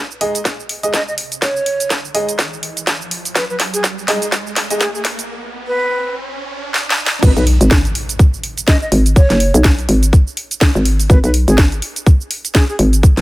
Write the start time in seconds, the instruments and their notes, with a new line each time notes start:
Already playing: riser
0.11 shaker
0.21 grand piano G#3 D#4 G#4 D#5, open hi-hat
0.35 closed hi-hat, shaker
0.45 kick, snare, closed hi-hat, shaker
0.60 shaker
0.69 open hi-hat
0.83 grand piano G#3 D#4 G#4 D#5, closed hi-hat, shaker
0.94 flute D#5, kick, snare, closed hi-hat, shaker
1.08 flute D#5, shaker
1.18 open hi-hat
1.32 closed hi-hat, shaker
1.42 flute C#5, kick, snare, closed hi-hat, shaker
1.56 shaker
1.66 open hi-hat
1.80 closed hi-hat, shaker
1.90 kick, snare, closed hi-hat, shaker
2.05 shaker
2.14 grand piano G#3 D#4 G#4 D#5, open hi-hat
2.29 closed hi-hat, shaker
2.39 kick, snare, closed hi-hat, shaker
2.53 shaker
2.63 open hi-hat
2.77 closed hi-hat, shaker
2.87 kick, snare, closed hi-hat, shaker
3.02 shaker
3.11 open hi-hat
3.25 open hi-hat, shaker
3.35 flute B4, kick, snare, closed hi-hat, shaker
3.50 flute B4, shaker
3.60 snare, open hi-hat
3.74 flute G#4, closed hi-hat, shaker
3.84 kick, snare, closed hi-hat, shaker
3.98 shaker
4.08 grand piano G#3 D#4 G#4 D#5, snare, open hi-hat
4.22 closed hi-hat, shaker
4.32 kick, snare, closed hi-hat, shaker
4.47 shaker
4.56 snare, open hi-hat
4.70 grand piano G#3 D#4 G#4 D#5, closed hi-hat, shaker
4.81 flute G#4, kick, snare, closed hi-hat, shaker
4.95 flute G#4, shaker
5.05 snare, open hi-hat
5.19 closed hi-hat, shaker
5.67 flute B4
6.74 snare
6.90 snare
7.06 snare
7.23 fm bass G#1, flute B4, kick, crash, impact, shaker
7.37 fm bass B1, flute B4, closed hi-hat, shaker
7.47 open hi-hat
7.61 fm bass G#1, closed hi-hat, shaker
7.71 kick, snare, shaker
7.85 closed hi-hat, shaker
7.95 open hi-hat
8.09 closed hi-hat, shaker
8.19 kick, shaker
8.34 shaker
8.44 open hi-hat
8.58 closed hi-hat, shaker
8.68 flute D#5, kick, snare, shaker
8.82 flute D#5, shaker
8.92 fm bass G#1, open hi-hat
9.06 closed hi-hat, shaker
9.16 flute C#5, kick, shaker
9.30 fm bass F#1, snare, closed hi-hat, shaker
9.40 open hi-hat
9.54 fm bass B1, closed hi-hat, shaker
9.64 kick, snare, shaker
9.79 closed hi-hat, shaker
9.89 fm bass G#1, open hi-hat
10.03 closed hi-hat, shaker
10.13 kick, shaker
10.27 shaker
10.37 open hi-hat
10.51 closed hi-hat, shaker
10.61 kick, snare, shaker
10.75 fm bass G#1, shaker
10.85 open hi-hat
11.00 open hi-hat, shaker
11.10 fm bass G#1, flute B4, kick, shaker
11.24 fm bass B1, flute B4, closed hi-hat, shaker
11.34 open hi-hat
11.48 fm bass G#1, flute G#4, closed hi-hat, shaker
11.58 kick, snare, shaker
11.72 closed hi-hat, shaker
11.82 open hi-hat
11.96 closed hi-hat, shaker
12.06 kick, shaker
12.21 shaker
12.31 open hi-hat
12.45 closed hi-hat, shaker
12.55 flute G#4, kick, snare, shaker
12.69 flute G#4, shaker
12.79 fm bass G#1, open hi-hat
12.93 closed hi-hat, shaker
13.03 kick, shaker
13.17 fm bass F#1, snare, closed hi-hat, shaker